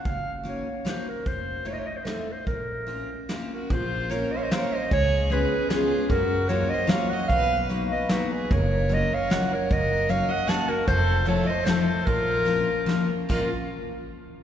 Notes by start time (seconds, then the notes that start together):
0.05 F#1 F5, kick, closed hi-hat
0.44 A#3 C#4 D#4 F#4, closed hi-hat
0.48 C#5
0.85 A#3 C#4 D#4 F#4 C5, snare, closed hi-hat
1.08 A#4
1.26 F1 C5, kick, closed hi-hat
1.65 A3 C4 D#4 F4 C#5, closed hi-hat
1.73 D#5
1.78 C#5
1.86 D#5
1.96 C5
2.05 A3 C4 D#4 F4 A4, snare, closed hi-hat
2.32 C5
2.47 A#1 A#4, kick, closed hi-hat
2.87 A#3 C4 C#4 F4, closed hi-hat
3.29 A#3 C4 C#4 F4, snare, closed hi-hat
3.53 F#4 A#4
3.70 A#1 C5, kick, closed hi-hat
3.74 F4
4.10 A#3 C4 C#4 F4 A#4 C#5, closed hi-hat
4.32 C5 D#5
4.36 C#5 F5
4.43 C5 D#5
4.51 A#3 C4 C#4 F4 A#4 C#5 F5, snare, closed hi-hat
4.73 C5 D#5
4.91 C#2 G#4 C#5, kick, closed hi-hat
5.30 G#3 B3 C#4 F4 G#4 B4, closed hi-hat
5.70 G#3 B3 C#4 F4 G#4, snare, closed hi-hat
6.10 F#2 F#4 A#4, kick, closed hi-hat
6.49 F#3 A#3 C#4 F4 F#4 A#4 C#5, closed hi-hat
6.69 C5 D#5
6.87 F#3 A#3 C#4 F4 F#4 C#5 F5, snare, closed hi-hat
7.09 D#5 F#5
7.28 B1 F5, kick, closed hi-hat
7.33 B4
7.69 F#3 A#3 B3 D#4 F#4, closed hi-hat
7.92 B4 D#5
8.09 F#3 A#3 B3 D#4 F#4 B4, snare, closed hi-hat
8.33 G#4 B4
8.50 F#1 A#4 C#5, kick, closed hi-hat
8.89 F#3 A#3 C#4 F4 F#4 A#4, closed hi-hat
8.94 D#5
9.13 C#5 F5
9.30 F#3 A#3 C#4 F4 F#4 C#5 F#5, snare, closed hi-hat
9.52 A#4 C#5
9.70 F#1 A#4 D#5, kick, closed hi-hat
10.09 F#3 A#3 C#4 D#4 F#4 C#5 F5, closed hi-hat
10.29 D#5 F#5
10.47 F#3 A#3 C#4 D#4 F#4 F#5 A5, snare, closed hi-hat
10.68 F#4 A#4
10.87 F1 A4 C5, kick, closed hi-hat
11.25 F3 A3 C4 D#4 F4 A4 C#5, closed hi-hat
11.46 C5 D#5
11.65 F3 A3 C4 D#4 F4 C5, snare, closed hi-hat
11.69 A4
12.06 A#1 F4 A#4, kick, closed hi-hat
12.45 F3 A#3 C4 C#4 F4, closed hi-hat
12.86 F3 A#3 C4 C#4 F4, snare, closed hi-hat
13.29 A#1 A#3 C4 C#4 F4 A#4, kick, crash